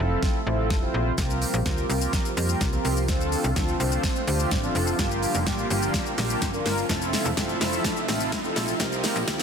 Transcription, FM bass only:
0.00 F1
0.47 A1
0.70 F1
0.94 A#1
1.18 C2
1.54 A#1
1.66 D2
1.90 C2
2.37 F2
2.61 C2
2.85 C2
3.08 D2
3.44 C2
3.56 D2
3.80 C2
4.28 D2
4.51 A1
4.75 F1
4.99 G1
5.35 F1
5.47 A1
5.70 G1
6.18 A#1
6.42 G1
6.66 G1
6.89 F1
7.25 E1
7.37 G1
7.61 F1
8.09 A1
8.32 F1
8.56 A#1
8.80 C2
9.16 A#1
9.28 D2

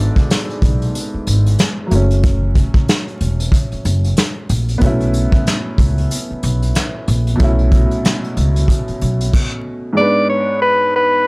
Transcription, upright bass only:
0.62 B1
1.14 muted upright bass stroke
1.27 G#1
1.91 F#1
3.21 E1
3.72 muted upright bass stroke
3.85 F#1
4.50 A#1
4.82 B1
5.78 C#2
6.31 muted upright bass stroke
6.43 B1
7.08 A#1
7.40 B1
8.37 C#2
8.89 muted upright bass stroke
9.02 B1

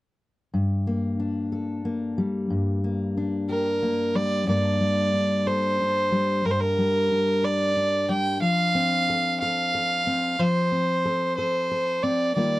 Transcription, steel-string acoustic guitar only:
0.54 G2
0.87 A#3
1.20 D4
1.52 A4
1.85 A#3
2.18 G3
2.50 G2
2.84 A#3
3.17 D4
3.49 G4
3.82 A#3
4.15 G3
4.47 G2 G3 A#3 D4 A4
4.80 G3
5.14 D4
5.47 A4
5.80 D4
6.12 G3
6.45 G2
6.78 G3
7.11 D4
7.43 A#4
7.76 D4
8.09 G3
8.41 F3
8.75 C4
9.10 A4
9.42 A4
9.75 A4
10.07 C4
10.39 F3
10.72 C4
11.05 A4
11.38 A4
11.71 A4
12.03 C4
12.36 D#3 G3 A#3 F4 G4

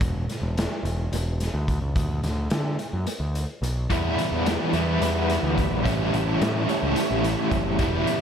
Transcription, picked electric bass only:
0.01 E1
0.41 E1
0.83 E1
1.12 E1
1.54 D2
1.81 C#2
1.95 D2
2.24 D2
2.51 D3
2.93 F#2
3.20 D2
3.62 B1
3.91 E2
4.32 E2
4.73 E2
5.01 E2
5.43 D2
5.71 A#1
5.85 A1
6.13 A1
6.41 A2
6.82 C#2
7.11 A1
7.51 F#1
7.79 E1

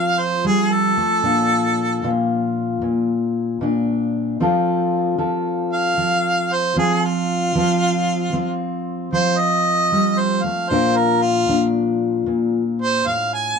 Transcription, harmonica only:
Already playing: F5
0.20 C5
0.46 G#4
0.72 A4
5.73 F5
6.53 C5
6.79 G#4
7.05 F4
9.13 C5
9.38 D#5
10.18 C5
10.43 F5
10.69 C5
10.96 A#4
11.22 F4
12.82 C5
13.06 F5
13.33 G#5

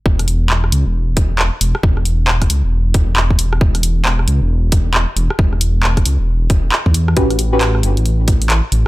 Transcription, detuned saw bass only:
0.06 E1
0.72 C#2
0.86 E1
1.61 E1
1.83 E1
2.50 C#2
2.64 E1
3.17 E1
3.61 E1
4.28 C#2
4.42 E1
5.17 E1
5.39 E1
6.06 C#2
6.19 E1
6.86 E2
7.17 A1
7.83 G1
7.97 A1
8.72 A1

